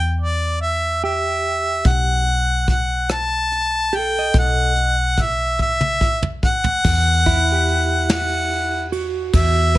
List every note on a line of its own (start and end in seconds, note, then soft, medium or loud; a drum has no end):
0.00 1.81 E2 medium
0.00 0.15 G5 medium
0.20 0.58 D5 medium
0.62 1.00 E5 medium
1.04 2.23 G4 soft
1.04 1.88 E5 medium
1.85 4.30 B1 medium
1.85 2.69 F#5 medium
1.85 kick medium
1.85 closed hi-hat medium
2.27 closed hi-hat soft
2.68 3.08 F#5 medium
2.68 kick medium
2.68 closed hi-hat soft
3.09 3.97 A5 medium
3.09 cross-stick medium
3.09 closed hi-hat medium
3.52 closed hi-hat medium
3.93 4.72 A4 medium
3.93 4.36 G5 medium
3.93 closed hi-hat soft
4.19 4.95 D#5 soft
4.34 6.81 B1 medium
4.34 kick medium
4.34 closed hi-hat medium
4.39 5.23 F#5 medium
4.76 closed hi-hat soft
5.18 5.61 E5 medium
5.18 kick medium
5.18 closed hi-hat soft
5.59 6.28 E5 medium
5.59 kick soft
5.81 high tom soft
6.01 kick medium
6.22 mid tom medium
6.43 8.07 F#5 loud
6.43 kick medium
6.64 floor tom medium
6.85 9.30 E2 medium
6.85 kick medium
6.85 crash medium
7.26 8.85 E4 medium
7.26 kick medium
7.26 ride soft
7.52 9.08 G4 soft
7.68 ride soft
8.09 8.90 F#5 medium
8.09 snare medium
8.09 ride medium
8.51 ride soft
8.92 9.78 F#4 soft
8.92 ride medium
9.33 9.78 E2 medium
9.33 9.78 E5 medium
9.33 kick medium
9.33 ride medium